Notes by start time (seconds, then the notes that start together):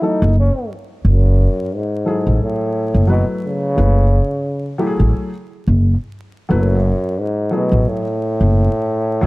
0.01 F#3 A3 D#4 E4 A4
0.22 F#1
0.39 C#4
1.05 F#1 F#2
1.75 G#2
2.05 F#3 E4 G#4 A4
2.27 A1
2.43 A2
2.94 F#1
3.07 B2 F#3 A3 E4 B4
3.45 C#3
3.76 F#1 F#3 A3 E4 B4
4.78 F#3 A3 E4 G4
4.87 G#4
5.00 A1
5.67 F#1
6.49 F#1 F#2 F#3 A3 E4 B4
7.20 G#2
7.51 B2 F#3 A3 E4 G#4
7.72 A1
7.88 A2
8.41 F#1
9.21 F#1 F#3 A3 E4 G#4